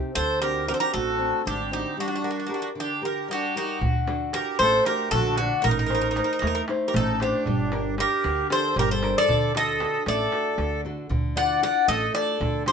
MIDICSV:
0, 0, Header, 1, 6, 480
1, 0, Start_track
1, 0, Tempo, 521739
1, 139, Time_signature, 7, 3, 24, 8
1, 11704, End_track
2, 0, Start_track
2, 0, Title_t, "Bouzouki"
2, 0, Program_c, 0, 25
2, 142, Note_on_c, 0, 72, 103
2, 364, Note_off_c, 0, 72, 0
2, 383, Note_on_c, 0, 70, 93
2, 605, Note_off_c, 0, 70, 0
2, 630, Note_on_c, 0, 70, 89
2, 676, Note_off_c, 0, 70, 0
2, 680, Note_on_c, 0, 72, 66
2, 734, Note_off_c, 0, 72, 0
2, 737, Note_on_c, 0, 70, 88
2, 851, Note_off_c, 0, 70, 0
2, 861, Note_on_c, 0, 69, 95
2, 1350, Note_off_c, 0, 69, 0
2, 1354, Note_on_c, 0, 67, 81
2, 1572, Note_off_c, 0, 67, 0
2, 1594, Note_on_c, 0, 67, 72
2, 1813, Note_off_c, 0, 67, 0
2, 1843, Note_on_c, 0, 66, 79
2, 1900, Note_off_c, 0, 66, 0
2, 1911, Note_on_c, 0, 66, 55
2, 1972, Note_off_c, 0, 66, 0
2, 1984, Note_on_c, 0, 66, 56
2, 2042, Note_off_c, 0, 66, 0
2, 2063, Note_on_c, 0, 66, 49
2, 2110, Note_off_c, 0, 66, 0
2, 2121, Note_on_c, 0, 66, 51
2, 2180, Note_off_c, 0, 66, 0
2, 2203, Note_on_c, 0, 66, 44
2, 2255, Note_off_c, 0, 66, 0
2, 2269, Note_on_c, 0, 66, 53
2, 2322, Note_off_c, 0, 66, 0
2, 2337, Note_on_c, 0, 66, 46
2, 2390, Note_off_c, 0, 66, 0
2, 2410, Note_on_c, 0, 66, 61
2, 2461, Note_off_c, 0, 66, 0
2, 2577, Note_on_c, 0, 67, 80
2, 2804, Note_off_c, 0, 67, 0
2, 2808, Note_on_c, 0, 70, 72
2, 3042, Note_off_c, 0, 70, 0
2, 3046, Note_on_c, 0, 67, 77
2, 3059, Note_on_c, 0, 66, 71
2, 3260, Note_off_c, 0, 67, 0
2, 3274, Note_off_c, 0, 66, 0
2, 3285, Note_on_c, 0, 66, 75
2, 3294, Note_on_c, 0, 67, 60
2, 3504, Note_off_c, 0, 67, 0
2, 3990, Note_on_c, 0, 70, 89
2, 4018, Note_off_c, 0, 66, 0
2, 4212, Note_off_c, 0, 70, 0
2, 4222, Note_on_c, 0, 72, 100
2, 4448, Note_off_c, 0, 72, 0
2, 4474, Note_on_c, 0, 70, 82
2, 4694, Note_off_c, 0, 70, 0
2, 4702, Note_on_c, 0, 69, 96
2, 4928, Note_off_c, 0, 69, 0
2, 4946, Note_on_c, 0, 66, 83
2, 5189, Note_on_c, 0, 70, 88
2, 5194, Note_off_c, 0, 66, 0
2, 5243, Note_off_c, 0, 70, 0
2, 5254, Note_on_c, 0, 70, 66
2, 5316, Note_off_c, 0, 70, 0
2, 5327, Note_on_c, 0, 70, 63
2, 5384, Note_off_c, 0, 70, 0
2, 5395, Note_on_c, 0, 70, 51
2, 5457, Note_off_c, 0, 70, 0
2, 5470, Note_on_c, 0, 70, 61
2, 5522, Note_off_c, 0, 70, 0
2, 5533, Note_on_c, 0, 70, 55
2, 5595, Note_off_c, 0, 70, 0
2, 5621, Note_on_c, 0, 70, 57
2, 5662, Note_off_c, 0, 70, 0
2, 5673, Note_on_c, 0, 70, 47
2, 5734, Note_off_c, 0, 70, 0
2, 5743, Note_on_c, 0, 70, 55
2, 5803, Note_off_c, 0, 70, 0
2, 5821, Note_on_c, 0, 70, 52
2, 5869, Note_off_c, 0, 70, 0
2, 5880, Note_on_c, 0, 70, 62
2, 5940, Note_off_c, 0, 70, 0
2, 5952, Note_on_c, 0, 70, 58
2, 6010, Note_off_c, 0, 70, 0
2, 6024, Note_on_c, 0, 70, 72
2, 6080, Note_off_c, 0, 70, 0
2, 6330, Note_on_c, 0, 70, 64
2, 6388, Note_off_c, 0, 70, 0
2, 6406, Note_on_c, 0, 69, 83
2, 6644, Note_off_c, 0, 69, 0
2, 6646, Note_on_c, 0, 67, 79
2, 7319, Note_off_c, 0, 67, 0
2, 7362, Note_on_c, 0, 70, 86
2, 7838, Note_off_c, 0, 70, 0
2, 7841, Note_on_c, 0, 72, 93
2, 8080, Note_off_c, 0, 72, 0
2, 8088, Note_on_c, 0, 70, 88
2, 8196, Note_off_c, 0, 70, 0
2, 8200, Note_on_c, 0, 72, 86
2, 8439, Note_off_c, 0, 72, 0
2, 8446, Note_on_c, 0, 74, 99
2, 8801, Note_off_c, 0, 74, 0
2, 8805, Note_on_c, 0, 75, 104
2, 9273, Note_off_c, 0, 75, 0
2, 9277, Note_on_c, 0, 74, 92
2, 9952, Note_off_c, 0, 74, 0
2, 10460, Note_on_c, 0, 78, 92
2, 10692, Note_off_c, 0, 78, 0
2, 10703, Note_on_c, 0, 78, 90
2, 10929, Note_off_c, 0, 78, 0
2, 10933, Note_on_c, 0, 75, 99
2, 11171, Note_off_c, 0, 75, 0
2, 11174, Note_on_c, 0, 74, 89
2, 11622, Note_off_c, 0, 74, 0
2, 11663, Note_on_c, 0, 72, 91
2, 11704, Note_off_c, 0, 72, 0
2, 11704, End_track
3, 0, Start_track
3, 0, Title_t, "Accordion"
3, 0, Program_c, 1, 21
3, 140, Note_on_c, 1, 69, 83
3, 363, Note_off_c, 1, 69, 0
3, 383, Note_on_c, 1, 67, 76
3, 605, Note_off_c, 1, 67, 0
3, 626, Note_on_c, 1, 67, 76
3, 674, Note_on_c, 1, 69, 62
3, 680, Note_off_c, 1, 67, 0
3, 733, Note_off_c, 1, 69, 0
3, 743, Note_on_c, 1, 67, 79
3, 854, Note_off_c, 1, 67, 0
3, 861, Note_on_c, 1, 66, 80
3, 1308, Note_off_c, 1, 66, 0
3, 1343, Note_on_c, 1, 62, 70
3, 1567, Note_off_c, 1, 62, 0
3, 1585, Note_on_c, 1, 63, 67
3, 1808, Note_off_c, 1, 63, 0
3, 1831, Note_on_c, 1, 62, 76
3, 2512, Note_off_c, 1, 62, 0
3, 2559, Note_on_c, 1, 62, 68
3, 2776, Note_off_c, 1, 62, 0
3, 2803, Note_on_c, 1, 67, 67
3, 3018, Note_off_c, 1, 67, 0
3, 3054, Note_on_c, 1, 62, 64
3, 3264, Note_off_c, 1, 62, 0
3, 3290, Note_on_c, 1, 63, 55
3, 3502, Note_off_c, 1, 63, 0
3, 3995, Note_on_c, 1, 67, 78
3, 4215, Note_off_c, 1, 67, 0
3, 4244, Note_on_c, 1, 69, 92
3, 4459, Note_off_c, 1, 69, 0
3, 4484, Note_on_c, 1, 67, 76
3, 4699, Note_off_c, 1, 67, 0
3, 4722, Note_on_c, 1, 66, 80
3, 4938, Note_off_c, 1, 66, 0
3, 4957, Note_on_c, 1, 62, 76
3, 5176, Note_off_c, 1, 62, 0
3, 5201, Note_on_c, 1, 63, 82
3, 6117, Note_off_c, 1, 63, 0
3, 6327, Note_on_c, 1, 67, 53
3, 6383, Note_off_c, 1, 67, 0
3, 6397, Note_on_c, 1, 63, 68
3, 6615, Note_off_c, 1, 63, 0
3, 6637, Note_on_c, 1, 62, 70
3, 7315, Note_off_c, 1, 62, 0
3, 7353, Note_on_c, 1, 67, 86
3, 7796, Note_off_c, 1, 67, 0
3, 7834, Note_on_c, 1, 69, 81
3, 8053, Note_off_c, 1, 69, 0
3, 8074, Note_on_c, 1, 67, 76
3, 8182, Note_off_c, 1, 67, 0
3, 8201, Note_on_c, 1, 69, 71
3, 8417, Note_off_c, 1, 69, 0
3, 8433, Note_on_c, 1, 69, 88
3, 8763, Note_off_c, 1, 69, 0
3, 8792, Note_on_c, 1, 69, 93
3, 9234, Note_off_c, 1, 69, 0
3, 9267, Note_on_c, 1, 69, 80
3, 9947, Note_off_c, 1, 69, 0
3, 10461, Note_on_c, 1, 74, 83
3, 10681, Note_off_c, 1, 74, 0
3, 10695, Note_on_c, 1, 74, 81
3, 10921, Note_off_c, 1, 74, 0
3, 10931, Note_on_c, 1, 69, 91
3, 11158, Note_off_c, 1, 69, 0
3, 11173, Note_on_c, 1, 69, 80
3, 11622, Note_off_c, 1, 69, 0
3, 11653, Note_on_c, 1, 67, 87
3, 11704, Note_off_c, 1, 67, 0
3, 11704, End_track
4, 0, Start_track
4, 0, Title_t, "Nylon-string guitar"
4, 0, Program_c, 2, 24
4, 0, Note_on_c, 2, 48, 66
4, 0, Note_on_c, 2, 67, 50
4, 94, Note_off_c, 2, 67, 0
4, 129, Note_off_c, 2, 48, 0
4, 137, Note_on_c, 2, 50, 61
4, 376, Note_on_c, 2, 60, 44
4, 382, Note_on_c, 2, 62, 43
4, 388, Note_on_c, 2, 66, 49
4, 605, Note_off_c, 2, 50, 0
4, 605, Note_off_c, 2, 60, 0
4, 607, Note_off_c, 2, 62, 0
4, 615, Note_off_c, 2, 66, 0
4, 615, Note_on_c, 2, 60, 50
4, 619, Note_on_c, 2, 62, 41
4, 626, Note_on_c, 2, 66, 53
4, 867, Note_on_c, 2, 57, 65
4, 1003, Note_off_c, 2, 60, 0
4, 1004, Note_off_c, 2, 62, 0
4, 1009, Note_off_c, 2, 66, 0
4, 1090, Note_on_c, 2, 60, 47
4, 1094, Note_on_c, 2, 62, 45
4, 1099, Note_on_c, 2, 66, 52
4, 1331, Note_off_c, 2, 57, 0
4, 1338, Note_on_c, 2, 50, 63
4, 1480, Note_off_c, 2, 60, 0
4, 1482, Note_off_c, 2, 62, 0
4, 1485, Note_off_c, 2, 66, 0
4, 1573, Note_on_c, 2, 60, 49
4, 1580, Note_on_c, 2, 62, 45
4, 1582, Note_on_c, 2, 66, 48
4, 1770, Note_off_c, 2, 60, 0
4, 1772, Note_off_c, 2, 62, 0
4, 1775, Note_off_c, 2, 66, 0
4, 1807, Note_off_c, 2, 50, 0
4, 1815, Note_on_c, 2, 55, 62
4, 2056, Note_on_c, 2, 67, 45
4, 2060, Note_on_c, 2, 69, 39
4, 2061, Note_on_c, 2, 70, 52
4, 2278, Note_off_c, 2, 67, 0
4, 2283, Note_off_c, 2, 69, 0
4, 2285, Note_off_c, 2, 55, 0
4, 2285, Note_off_c, 2, 70, 0
4, 2290, Note_on_c, 2, 67, 42
4, 2294, Note_on_c, 2, 69, 43
4, 2298, Note_on_c, 2, 70, 46
4, 2532, Note_on_c, 2, 50, 58
4, 2680, Note_off_c, 2, 67, 0
4, 2683, Note_off_c, 2, 69, 0
4, 2684, Note_off_c, 2, 70, 0
4, 2774, Note_on_c, 2, 67, 47
4, 2777, Note_on_c, 2, 69, 40
4, 2783, Note_on_c, 2, 70, 50
4, 3005, Note_off_c, 2, 50, 0
4, 3021, Note_on_c, 2, 55, 63
4, 3163, Note_off_c, 2, 67, 0
4, 3165, Note_off_c, 2, 69, 0
4, 3168, Note_off_c, 2, 70, 0
4, 3267, Note_on_c, 2, 67, 45
4, 3271, Note_on_c, 2, 69, 42
4, 3276, Note_on_c, 2, 70, 50
4, 3459, Note_off_c, 2, 67, 0
4, 3460, Note_off_c, 2, 69, 0
4, 3464, Note_off_c, 2, 70, 0
4, 3489, Note_off_c, 2, 55, 0
4, 3510, Note_on_c, 2, 50, 64
4, 3746, Note_on_c, 2, 62, 52
4, 3749, Note_on_c, 2, 66, 44
4, 3754, Note_on_c, 2, 69, 54
4, 3974, Note_off_c, 2, 50, 0
4, 3979, Note_off_c, 2, 62, 0
4, 3982, Note_off_c, 2, 66, 0
4, 3986, Note_off_c, 2, 69, 0
4, 3989, Note_on_c, 2, 62, 47
4, 3995, Note_on_c, 2, 66, 43
4, 3997, Note_on_c, 2, 69, 52
4, 4234, Note_on_c, 2, 57, 70
4, 4373, Note_off_c, 2, 62, 0
4, 4375, Note_off_c, 2, 66, 0
4, 4377, Note_off_c, 2, 69, 0
4, 4467, Note_on_c, 2, 62, 51
4, 4471, Note_on_c, 2, 66, 45
4, 4478, Note_on_c, 2, 69, 55
4, 4696, Note_off_c, 2, 57, 0
4, 4710, Note_on_c, 2, 50, 74
4, 4851, Note_off_c, 2, 62, 0
4, 4854, Note_off_c, 2, 66, 0
4, 4858, Note_off_c, 2, 69, 0
4, 4947, Note_on_c, 2, 62, 51
4, 4952, Note_on_c, 2, 69, 54
4, 4953, Note_on_c, 2, 66, 46
4, 5139, Note_off_c, 2, 62, 0
4, 5141, Note_off_c, 2, 66, 0
4, 5142, Note_off_c, 2, 69, 0
4, 5174, Note_off_c, 2, 50, 0
4, 5189, Note_on_c, 2, 57, 70
4, 5420, Note_on_c, 2, 63, 47
4, 5424, Note_on_c, 2, 69, 42
4, 5425, Note_on_c, 2, 72, 52
4, 5652, Note_off_c, 2, 63, 0
4, 5654, Note_off_c, 2, 57, 0
4, 5655, Note_off_c, 2, 69, 0
4, 5660, Note_off_c, 2, 72, 0
4, 5662, Note_on_c, 2, 63, 49
4, 5668, Note_on_c, 2, 69, 46
4, 5671, Note_on_c, 2, 72, 53
4, 5911, Note_on_c, 2, 57, 70
4, 6049, Note_off_c, 2, 63, 0
4, 6050, Note_off_c, 2, 69, 0
4, 6053, Note_off_c, 2, 72, 0
4, 6151, Note_on_c, 2, 63, 51
4, 6155, Note_on_c, 2, 69, 47
4, 6161, Note_on_c, 2, 72, 57
4, 6371, Note_off_c, 2, 57, 0
4, 6382, Note_on_c, 2, 57, 75
4, 6533, Note_off_c, 2, 63, 0
4, 6536, Note_off_c, 2, 69, 0
4, 6539, Note_off_c, 2, 72, 0
4, 6632, Note_on_c, 2, 63, 51
4, 6638, Note_on_c, 2, 69, 48
4, 6638, Note_on_c, 2, 72, 58
4, 6823, Note_off_c, 2, 63, 0
4, 6824, Note_off_c, 2, 69, 0
4, 6826, Note_off_c, 2, 72, 0
4, 6850, Note_off_c, 2, 57, 0
4, 6871, Note_on_c, 2, 55, 69
4, 7100, Note_on_c, 2, 62, 54
4, 7104, Note_on_c, 2, 67, 49
4, 7111, Note_on_c, 2, 70, 53
4, 7331, Note_off_c, 2, 62, 0
4, 7333, Note_off_c, 2, 67, 0
4, 7334, Note_off_c, 2, 55, 0
4, 7339, Note_off_c, 2, 70, 0
4, 7342, Note_on_c, 2, 62, 51
4, 7345, Note_on_c, 2, 67, 43
4, 7350, Note_on_c, 2, 70, 54
4, 7579, Note_on_c, 2, 50, 66
4, 7727, Note_off_c, 2, 62, 0
4, 7729, Note_off_c, 2, 67, 0
4, 7732, Note_off_c, 2, 70, 0
4, 7821, Note_on_c, 2, 62, 51
4, 7824, Note_on_c, 2, 67, 46
4, 7831, Note_on_c, 2, 70, 54
4, 8047, Note_off_c, 2, 50, 0
4, 8064, Note_on_c, 2, 55, 69
4, 8206, Note_off_c, 2, 62, 0
4, 8207, Note_off_c, 2, 67, 0
4, 8213, Note_off_c, 2, 70, 0
4, 8299, Note_on_c, 2, 62, 49
4, 8305, Note_on_c, 2, 67, 46
4, 8307, Note_on_c, 2, 70, 57
4, 8493, Note_off_c, 2, 62, 0
4, 8495, Note_off_c, 2, 67, 0
4, 8498, Note_off_c, 2, 70, 0
4, 8530, Note_off_c, 2, 55, 0
4, 8548, Note_on_c, 2, 50, 68
4, 8775, Note_off_c, 2, 50, 0
4, 8786, Note_on_c, 2, 50, 50
4, 8790, Note_on_c, 2, 66, 41
4, 8796, Note_on_c, 2, 69, 54
4, 9013, Note_off_c, 2, 66, 0
4, 9014, Note_off_c, 2, 69, 0
4, 9020, Note_on_c, 2, 62, 48
4, 9023, Note_on_c, 2, 66, 43
4, 9027, Note_on_c, 2, 69, 55
4, 9169, Note_off_c, 2, 50, 0
4, 9260, Note_on_c, 2, 57, 61
4, 9405, Note_off_c, 2, 62, 0
4, 9407, Note_off_c, 2, 66, 0
4, 9408, Note_off_c, 2, 69, 0
4, 9496, Note_on_c, 2, 62, 49
4, 9502, Note_on_c, 2, 66, 45
4, 9504, Note_on_c, 2, 69, 52
4, 9726, Note_off_c, 2, 57, 0
4, 9736, Note_on_c, 2, 50, 66
4, 9883, Note_off_c, 2, 62, 0
4, 9884, Note_off_c, 2, 66, 0
4, 9887, Note_off_c, 2, 69, 0
4, 9979, Note_on_c, 2, 62, 50
4, 9987, Note_on_c, 2, 66, 48
4, 9989, Note_on_c, 2, 69, 52
4, 10172, Note_off_c, 2, 62, 0
4, 10177, Note_off_c, 2, 66, 0
4, 10177, Note_off_c, 2, 69, 0
4, 10195, Note_off_c, 2, 50, 0
4, 10206, Note_on_c, 2, 50, 68
4, 10449, Note_on_c, 2, 62, 50
4, 10454, Note_on_c, 2, 65, 46
4, 10459, Note_on_c, 2, 69, 52
4, 10678, Note_off_c, 2, 62, 0
4, 10679, Note_off_c, 2, 50, 0
4, 10682, Note_off_c, 2, 65, 0
4, 10688, Note_off_c, 2, 69, 0
4, 10689, Note_on_c, 2, 62, 46
4, 10693, Note_on_c, 2, 65, 43
4, 10699, Note_on_c, 2, 69, 54
4, 10925, Note_on_c, 2, 57, 66
4, 11077, Note_off_c, 2, 62, 0
4, 11079, Note_off_c, 2, 65, 0
4, 11083, Note_off_c, 2, 69, 0
4, 11164, Note_on_c, 2, 62, 46
4, 11167, Note_on_c, 2, 65, 46
4, 11169, Note_on_c, 2, 69, 55
4, 11397, Note_off_c, 2, 57, 0
4, 11408, Note_on_c, 2, 50, 70
4, 11554, Note_off_c, 2, 62, 0
4, 11555, Note_off_c, 2, 65, 0
4, 11557, Note_off_c, 2, 69, 0
4, 11652, Note_on_c, 2, 62, 49
4, 11655, Note_on_c, 2, 65, 43
4, 11660, Note_on_c, 2, 69, 56
4, 11704, Note_off_c, 2, 50, 0
4, 11704, Note_off_c, 2, 62, 0
4, 11704, Note_off_c, 2, 65, 0
4, 11704, Note_off_c, 2, 69, 0
4, 11704, End_track
5, 0, Start_track
5, 0, Title_t, "Upright bass"
5, 0, Program_c, 3, 32
5, 147, Note_on_c, 3, 38, 98
5, 650, Note_off_c, 3, 38, 0
5, 867, Note_on_c, 3, 33, 84
5, 1202, Note_off_c, 3, 33, 0
5, 1351, Note_on_c, 3, 32, 84
5, 1685, Note_off_c, 3, 32, 0
5, 3509, Note_on_c, 3, 38, 93
5, 4013, Note_off_c, 3, 38, 0
5, 4229, Note_on_c, 3, 33, 94
5, 4397, Note_off_c, 3, 33, 0
5, 4702, Note_on_c, 3, 34, 100
5, 5040, Note_off_c, 3, 34, 0
5, 5197, Note_on_c, 3, 33, 95
5, 5698, Note_off_c, 3, 33, 0
5, 5909, Note_on_c, 3, 39, 91
5, 6076, Note_off_c, 3, 39, 0
5, 6388, Note_on_c, 3, 33, 100
5, 6724, Note_off_c, 3, 33, 0
5, 6873, Note_on_c, 3, 31, 97
5, 7374, Note_off_c, 3, 31, 0
5, 7586, Note_on_c, 3, 38, 89
5, 7754, Note_off_c, 3, 38, 0
5, 8060, Note_on_c, 3, 31, 101
5, 8398, Note_off_c, 3, 31, 0
5, 8545, Note_on_c, 3, 38, 85
5, 9048, Note_off_c, 3, 38, 0
5, 9260, Note_on_c, 3, 33, 94
5, 9429, Note_off_c, 3, 33, 0
5, 9732, Note_on_c, 3, 38, 91
5, 10071, Note_off_c, 3, 38, 0
5, 10214, Note_on_c, 3, 38, 95
5, 10720, Note_off_c, 3, 38, 0
5, 10931, Note_on_c, 3, 33, 90
5, 11102, Note_off_c, 3, 33, 0
5, 11414, Note_on_c, 3, 38, 95
5, 11704, Note_off_c, 3, 38, 0
5, 11704, End_track
6, 0, Start_track
6, 0, Title_t, "Darbuka"
6, 3509, Note_on_c, 9, 64, 96
6, 3601, Note_off_c, 9, 64, 0
6, 3749, Note_on_c, 9, 63, 67
6, 3841, Note_off_c, 9, 63, 0
6, 3986, Note_on_c, 9, 63, 74
6, 4078, Note_off_c, 9, 63, 0
6, 4231, Note_on_c, 9, 63, 69
6, 4323, Note_off_c, 9, 63, 0
6, 4466, Note_on_c, 9, 63, 70
6, 4558, Note_off_c, 9, 63, 0
6, 4705, Note_on_c, 9, 63, 67
6, 4705, Note_on_c, 9, 64, 64
6, 4797, Note_off_c, 9, 63, 0
6, 4797, Note_off_c, 9, 64, 0
6, 4944, Note_on_c, 9, 63, 73
6, 5036, Note_off_c, 9, 63, 0
6, 5072, Note_on_c, 9, 63, 28
6, 5164, Note_off_c, 9, 63, 0
6, 5189, Note_on_c, 9, 64, 88
6, 5281, Note_off_c, 9, 64, 0
6, 5431, Note_on_c, 9, 63, 68
6, 5523, Note_off_c, 9, 63, 0
6, 5668, Note_on_c, 9, 63, 70
6, 5760, Note_off_c, 9, 63, 0
6, 5906, Note_on_c, 9, 63, 74
6, 5998, Note_off_c, 9, 63, 0
6, 6144, Note_on_c, 9, 63, 75
6, 6236, Note_off_c, 9, 63, 0
6, 6386, Note_on_c, 9, 63, 65
6, 6386, Note_on_c, 9, 64, 58
6, 6478, Note_off_c, 9, 63, 0
6, 6478, Note_off_c, 9, 64, 0
6, 6624, Note_on_c, 9, 63, 65
6, 6716, Note_off_c, 9, 63, 0
6, 6751, Note_on_c, 9, 63, 26
6, 6843, Note_off_c, 9, 63, 0
6, 6861, Note_on_c, 9, 64, 89
6, 6953, Note_off_c, 9, 64, 0
6, 7100, Note_on_c, 9, 63, 69
6, 7192, Note_off_c, 9, 63, 0
6, 7342, Note_on_c, 9, 63, 70
6, 7434, Note_off_c, 9, 63, 0
6, 7583, Note_on_c, 9, 63, 70
6, 7675, Note_off_c, 9, 63, 0
6, 7823, Note_on_c, 9, 63, 71
6, 7915, Note_off_c, 9, 63, 0
6, 8067, Note_on_c, 9, 63, 66
6, 8067, Note_on_c, 9, 64, 64
6, 8159, Note_off_c, 9, 63, 0
6, 8159, Note_off_c, 9, 64, 0
6, 8304, Note_on_c, 9, 63, 71
6, 8396, Note_off_c, 9, 63, 0
6, 8545, Note_on_c, 9, 64, 98
6, 8637, Note_off_c, 9, 64, 0
6, 8662, Note_on_c, 9, 63, 26
6, 8754, Note_off_c, 9, 63, 0
6, 8784, Note_on_c, 9, 63, 70
6, 8876, Note_off_c, 9, 63, 0
6, 9019, Note_on_c, 9, 63, 78
6, 9111, Note_off_c, 9, 63, 0
6, 9136, Note_on_c, 9, 63, 29
6, 9228, Note_off_c, 9, 63, 0
6, 9257, Note_on_c, 9, 63, 71
6, 9349, Note_off_c, 9, 63, 0
6, 9497, Note_on_c, 9, 63, 69
6, 9589, Note_off_c, 9, 63, 0
6, 9619, Note_on_c, 9, 63, 25
6, 9711, Note_off_c, 9, 63, 0
6, 9735, Note_on_c, 9, 63, 66
6, 9827, Note_off_c, 9, 63, 0
6, 9852, Note_on_c, 9, 63, 25
6, 9944, Note_off_c, 9, 63, 0
6, 10099, Note_on_c, 9, 63, 26
6, 10191, Note_off_c, 9, 63, 0
6, 10217, Note_on_c, 9, 64, 76
6, 10309, Note_off_c, 9, 64, 0
6, 10462, Note_on_c, 9, 63, 56
6, 10554, Note_off_c, 9, 63, 0
6, 10701, Note_on_c, 9, 63, 63
6, 10793, Note_off_c, 9, 63, 0
6, 10934, Note_on_c, 9, 63, 68
6, 11026, Note_off_c, 9, 63, 0
6, 11176, Note_on_c, 9, 63, 72
6, 11268, Note_off_c, 9, 63, 0
6, 11418, Note_on_c, 9, 63, 62
6, 11418, Note_on_c, 9, 64, 64
6, 11510, Note_off_c, 9, 63, 0
6, 11510, Note_off_c, 9, 64, 0
6, 11650, Note_on_c, 9, 63, 66
6, 11704, Note_off_c, 9, 63, 0
6, 11704, End_track
0, 0, End_of_file